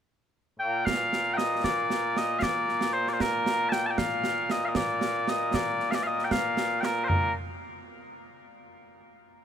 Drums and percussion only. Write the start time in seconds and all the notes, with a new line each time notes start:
0.87 concert bass drum, snare
1.13 snare
1.38 snare
1.64 concert bass drum, snare
1.90 snare
2.16 snare
2.42 concert bass drum, snare
2.69 snare
2.81 snare
3.07 snare
3.20 concert bass drum, snare
3.46 snare
3.72 snare
3.98 concert bass drum, snare
4.24 snare
4.50 snare
4.75 concert bass drum, snare
5.01 snare
5.28 snare
5.54 concert bass drum, snare
5.80 snare
5.92 snare
6.19 snare
6.31 concert bass drum, snare
6.57 snare
6.83 snare
7.10 mid tom